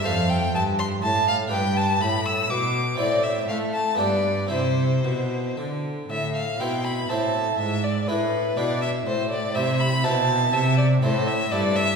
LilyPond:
<<
  \new Staff \with { instrumentName = "Violin" } { \time 3/4 \key c \major \tempo 4 = 122 f''8 g''8 a''8 c'''8 a''8 f''8 | g''8 a''8 b''8 e'''8 d'''4 | d''8 e''8 f''8 a''8 d''4 | c''2 r4 |
\key a \minor e''8 f''8 g''8 b''8 a''4 | e''8 d''8 b'4 d''8 e''8 | c''8 d''8 e''8 b''8 a''4 | e''8 d''8 c''8 e''8 d''8 e''8 | }
  \new Staff \with { instrumentName = "Harpsichord" } { \time 3/4 \key c \major <a a' c''>2. | <d' g' b'>2. | <c' e' c''>2 <b f' g'>4 | <c' e' g'>2. |
\key a \minor r4 <c' e' c''>4 <c' e' c''>4 | r4 <d' e' b'>4 <d' e' b'>4 | r4 <c' e' c''>4 <c' e' c''>4 | r4 <c' e' a'>4 <c' e' a'>4 | }
  \new Staff \with { instrumentName = "Harpsichord" } { \clef bass \time 3/4 \key c \major f,4 g,4 a,4 | g,4 a,4 b,4 | a,4 a4 g,4 | c4 b,4 d4 |
\key a \minor a,4 b,4 a,4 | gis,4 a,4 b,4 | a,4 c4 b,4 | c4 a,4 g,4 | }
  \new Staff \with { instrumentName = "Cello" } { \clef bass \time 3/4 \key c \major f,4 g,4 a,4 | g,4 a,4 b,4 | a,4 a4 g,4 | c4 b,4 d4 |
\key a \minor a,4 b,4 a,4 | gis,4 a,4 b,4 | a,4 c4 b,4 | c4 a,4 g,4 | }
>>